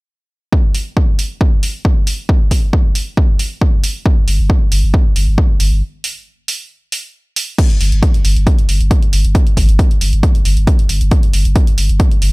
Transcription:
0.53 kick loud
0.75 open hi-hat loud
0.97 kick loud
1.19 open hi-hat loud
1.41 kick loud
1.63 open hi-hat loud
1.85 kick loud
2.07 open hi-hat loud
2.29 kick loud
2.51 kick medium
2.51 open hi-hat loud
2.73 kick loud
2.95 open hi-hat loud
3.17 kick loud
3.39 open hi-hat loud
3.61 kick loud
3.84 open hi-hat loud
4.06 kick loud
4.28 4.39 G1 loud
4.28 open hi-hat loud
4.39 4.50 G1 medium
4.50 kick loud
4.72 4.83 G1 loud
4.72 open hi-hat loud
4.83 4.94 G1 medium
4.94 kick loud
5.16 5.27 G1 loud
5.16 open hi-hat loud
5.28 5.38 G1 medium
5.38 kick loud
5.60 5.71 G1 medium
5.60 open hi-hat loud
5.72 5.82 G1 medium
6.04 open hi-hat loud
6.48 open hi-hat loud
6.92 open hi-hat loud
7.36 open hi-hat loud
7.58 kick loud
7.58 closed hi-hat medium
7.58 crash loud
7.70 closed hi-hat medium
7.81 7.92 G1 loud
7.81 open hi-hat loud
7.92 8.02 G1 medium
7.92 closed hi-hat medium
8.03 kick loud
8.03 closed hi-hat medium
8.14 closed hi-hat medium
8.25 8.36 G1 loud
8.25 open hi-hat loud
8.36 8.47 G1 medium
8.36 closed hi-hat medium
8.47 kick loud
8.47 closed hi-hat medium
8.59 closed hi-hat medium
8.69 8.80 G1 medium
8.69 open hi-hat loud
8.81 8.91 G1 medium
8.81 closed hi-hat medium
8.91 kick loud
8.91 closed hi-hat medium
9.03 closed hi-hat medium
9.13 9.24 G1 loud
9.13 open hi-hat loud
9.25 9.35 G1 medium
9.25 closed hi-hat medium
9.35 kick loud
9.35 closed hi-hat medium
9.47 closed hi-hat medium
9.57 9.68 G1 loud
9.57 kick medium
9.57 open hi-hat loud
9.69 9.79 G1 medium
9.69 closed hi-hat medium
9.79 kick loud
9.79 closed hi-hat medium
9.91 closed hi-hat medium
10.01 10.12 G1 loud
10.01 open hi-hat loud
10.13 10.23 G1 medium
10.13 closed hi-hat medium
10.23 kick loud
10.23 closed hi-hat medium
10.35 closed hi-hat medium
10.45 10.57 G1 loud
10.45 open hi-hat loud
10.57 10.67 G1 medium
10.57 closed hi-hat medium
10.67 kick loud
10.67 closed hi-hat medium
10.79 closed hi-hat medium
10.89 11.01 G1 medium
10.89 open hi-hat loud
11.01 11.11 G1 medium
11.01 closed hi-hat medium
11.11 kick loud
11.11 closed hi-hat medium
11.23 closed hi-hat medium
11.34 11.45 G1 loud
11.34 open hi-hat loud
11.45 11.55 G1 medium
11.45 closed hi-hat medium
11.56 kick loud
11.56 closed hi-hat medium
11.67 closed hi-hat medium
11.78 11.89 G1 loud
11.78 open hi-hat loud
11.89 12.00 G1 medium
11.89 closed hi-hat medium
12.00 kick loud
12.00 closed hi-hat medium
12.11 closed hi-hat medium
12.22 12.32 G1 loud
12.22 open hi-hat loud

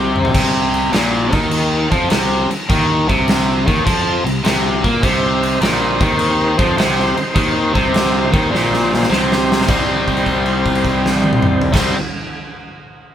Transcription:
0.00 0.30 C2 medium
0.00 0.33 C3 loud
0.00 0.32 C4 medium
0.00 0.32 D#4 medium
0.00 0.32 G4 medium
0.16 mid tom medium
0.25 floor tom medium
0.35 0.89 C2 medium
0.35 0.93 C3 loud
0.35 kick loud
0.35 crash loud
0.35 crash medium
0.74 crash medium
0.93 1.30 A#1 loud
0.93 1.33 A#2 loud
0.93 snare loud
0.93 crash medium
1.32 1.87 D#2 loud
1.32 1.90 D#3 loud
1.32 kick loud
1.32 crash medium
1.51 crash medium
1.92 2.09 F2 medium
1.92 2.10 F3 loud
1.92 kick medium
1.92 crash medium
2.10 2.47 C2 medium
2.10 2.49 C3 loud
2.10 snare loud
2.10 crash medium
2.50 muted fingered electric bass stroke soft
2.50 muted overdriven electric guitar stroke medium
2.50 crash medium
2.69 3.06 D#2 medium
2.69 3.07 D#3 loud
2.69 kick loud
2.69 crash medium
3.09 3.64 C2 loud
3.09 3.66 C3 loud
3.09 kick loud
3.09 crash medium
3.28 snare loud
3.28 crash medium
3.67 3.85 D#2 loud
3.67 3.85 D#3 loud
3.67 kick loud
3.67 crash medium
3.86 4.23 F2 medium
3.86 4.24 F3 loud
3.86 kick loud
3.86 crash medium
4.25 4.43 C2 medium
4.25 4.40 C3 medium
4.25 crash medium
4.44 4.82 C2 medium
4.44 4.83 C3 loud
4.44 snare loud
4.44 crash medium
4.84 5.01 A#2 medium
4.84 5.02 A#3 loud
4.84 kick loud
4.84 crash medium
5.02 5.57 C2 loud
5.02 5.60 C3 loud
5.02 7.34 C4 medium
5.02 7.34 D#4 medium
5.02 7.34 G4 medium
5.02 7.34 C5 medium
5.02 kick loud
5.02 crash medium
5.43 crash medium
5.61 5.98 A#1 medium
5.61 5.99 A#2 loud
5.61 snare loud
5.61 crash medium
6.00 6.55 D#2 loud
6.00 6.58 D#3 loud
6.00 kick loud
6.00 crash medium
6.19 crash medium
6.59 6.76 F2 medium
6.59 6.77 F3 loud
6.59 kick loud
6.59 crash medium
6.77 7.14 C2 loud
6.77 7.16 C3 loud
6.77 snare loud
6.77 crash medium
6.99 snare soft
7.17 muted overdriven electric guitar stroke medium
7.17 muted fingered electric bass stroke soft
7.17 crash medium
7.35 7.72 D#2 loud
7.35 7.74 D#3 loud
7.35 9.66 C4 medium
7.35 9.66 D#4 medium
7.35 9.66 G4 medium
7.35 9.66 C5 medium
7.35 kick loud
7.35 crash medium
7.74 8.30 C2 loud
7.74 8.32 C3 loud
7.74 kick loud
7.74 crash medium
7.94 snare loud
7.94 crash medium
8.33 8.51 D#2 loud
8.33 8.51 D#3 loud
8.33 kick loud
8.33 crash medium
8.52 9.06 A#1 medium
8.52 9.09 A#2 loud
8.52 snare medium
8.73 snare medium
8.94 snare medium
9.03 snare medium
9.10 9.64 C2 medium
9.10 9.65 C3 loud
9.10 snare medium
9.32 snare medium
9.52 snare medium
9.61 snare medium
9.66 11.60 C2 medium
9.66 11.72 C3 medium
9.66 11.75 G3 loud
9.66 11.62 C4 medium
9.66 11.62 D#4 medium
9.66 11.62 G4 medium
9.66 11.62 C5 medium
9.66 kick loud
9.66 crash medium
9.70 11.76 C4 medium
10.08 kick medium
10.08 crash soft
10.17 crash soft
10.26 kick medium
10.26 crash soft
10.46 crash soft
10.66 kick medium
10.66 crash soft
10.75 crash medium
10.85 kick medium
10.85 crash medium
11.06 snare medium
11.24 high tom loud
11.33 mid tom loud
11.42 mid tom loud
11.62 floor tom loud
11.73 11.93 C2 medium
11.73 11.94 C3 loud
11.73 11.95 G3 loud
11.73 11.96 C4 loud
11.73 11.96 C4 medium
11.73 11.95 D#4 medium
11.73 11.95 G4 medium
11.73 11.96 C5 medium
11.73 kick loud
11.73 snare loud
11.73 crash loud

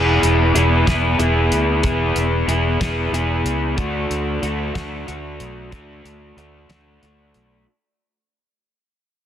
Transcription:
0.00 0.20 E1 medium
0.00 0.54 B3 medium
0.00 0.54 E4 medium
0.00 0.55 G#4 medium
0.22 0.52 E1 medium
0.22 closed hi-hat medium
0.54 0.84 E1 medium
0.54 0.85 B3 medium
0.54 0.86 E4 medium
0.54 0.86 G#4 medium
0.54 closed hi-hat medium
0.86 1.17 B3 medium
0.86 1.18 E4 medium
0.86 1.18 G#4 medium
0.86 kick medium
0.86 snare medium
0.86 closed hi-hat medium
1.19 1.49 E1 medium
1.19 1.82 B3 medium
1.19 1.83 E4 medium
1.19 1.83 G#4 medium
1.19 closed hi-hat medium
1.51 1.81 D2 medium
1.51 closed hi-hat medium
1.83 2.14 E1 medium
1.83 2.46 B3 medium
1.83 2.47 E4 medium
1.83 2.47 G#4 medium
1.83 kick medium
1.83 closed hi-hat medium
2.16 2.45 E1 medium
2.16 closed hi-hat medium
2.47 2.77 E1 medium
2.47 2.79 B3 medium
2.47 2.80 E4 medium
2.47 2.80 G#4 medium
2.47 closed hi-hat medium
2.81 3.11 B3 medium
2.81 3.12 E4 medium
2.81 3.12 G#4 medium
2.81 kick medium
2.81 snare loud
2.81 closed hi-hat medium
3.11 3.42 E1 medium
3.11 3.75 B3 medium
3.11 3.76 E4 medium
3.11 3.76 G#4 medium
3.11 closed hi-hat medium
3.44 3.74 C#2 medium
3.44 closed hi-hat medium
3.77 4.08 D2 medium
3.77 4.42 A3 medium
3.77 4.42 D4 medium
3.77 4.43 F#4 medium
3.77 kick medium
3.77 closed hi-hat medium
4.10 4.40 D2 medium
4.10 closed hi-hat medium
4.42 4.72 D2 medium
4.42 4.73 A3 medium
4.42 4.74 D4 medium
4.42 4.74 F#4 medium
4.42 closed hi-hat medium
4.74 5.06 A3 medium
4.74 5.07 D4 medium
4.74 5.07 F#4 medium
4.74 kick medium
4.74 snare loud
4.74 closed hi-hat medium
5.07 5.37 D2 medium
5.07 5.70 A3 medium
5.07 5.70 D4 medium
5.07 5.71 F#4 medium
5.07 closed hi-hat medium
5.40 5.69 B1 medium
5.40 closed hi-hat soft
5.71 6.36 A3 medium
5.71 6.36 D4 medium
5.71 6.37 F#4 medium
5.71 kick medium
5.71 closed hi-hat medium
6.05 6.34 D2 medium
6.05 closed hi-hat medium
6.36 6.66 D2 medium
6.36 6.68 A3 medium
6.36 6.68 D4 medium
6.36 6.69 F#4 medium
6.36 closed hi-hat medium
6.69 6.99 D2 medium
6.69 7.01 A3 medium
6.69 7.02 D4 medium
6.69 7.02 F#4 medium
6.69 snare medium
6.69 closed hi-hat medium
7.02 7.32 D2 medium
7.02 7.64 A3 medium
7.02 7.65 D4 medium
7.02 7.65 F#4 medium
7.02 closed hi-hat medium
7.34 7.64 B1 medium
7.34 closed hi-hat soft

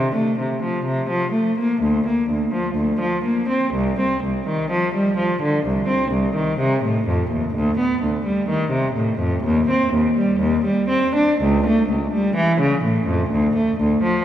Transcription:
0.00 0.13 C3 medium
0.16 0.38 A3 medium
0.39 0.61 C3 soft
0.63 0.85 F3 medium
0.86 1.09 C3 medium
1.10 1.33 F3 medium
1.32 1.56 A3 medium
1.59 1.81 A#3 medium
1.82 2.05 D2 medium
2.08 2.29 A#3 medium
2.31 2.53 D2 soft
2.53 2.76 F3 medium
2.75 2.99 D2 medium
3.01 3.24 F3 medium
3.25 3.48 A#3 medium
3.49 3.73 C4 medium
3.74 3.98 C2 medium
4.00 4.23 C4 medium
4.24 4.47 C2 soft
4.48 4.71 D#3 medium
4.71 4.94 F3 medium
4.95 5.17 G3 medium
5.17 5.40 F3 medium
5.42 5.65 D3 medium
5.67 5.89 C2 medium
5.88 6.11 C4 medium
6.12 6.35 C2 soft
6.36 6.59 D#3 medium
6.60 6.83 C3 medium
6.85 7.07 A2 medium
7.08 7.30 F2 medium
7.31 7.53 D#2 medium
7.55 7.77 D2 medium
7.79 8.01 B3 medium
8.03 8.25 D2 soft
8.26 8.48 G3 medium
8.50 8.72 D#3 medium
8.71 8.94 C3 medium
8.95 9.18 A2 medium
9.19 9.42 F2 medium
9.44 9.67 D#2 medium
9.70 9.92 C4 medium
9.94 10.15 D#2 medium
10.18 10.40 G3 medium
10.40 10.63 D#2 medium
10.66 10.88 G3 medium
10.89 11.13 C4 medium
11.15 11.39 D4 medium
11.42 11.64 C#2 medium
11.67 11.89 A3 medium
11.90 12.12 C#2 soft
12.15 12.36 G3 medium
12.36 12.59 E3 medium
12.61 12.83 C#3 medium
12.84 13.07 A2 medium
13.08 13.30 F2 medium
13.31 13.53 D2 medium
13.57 13.78 A3 medium
13.81 14.02 D2 medium
14.03 14.25 F3 medium

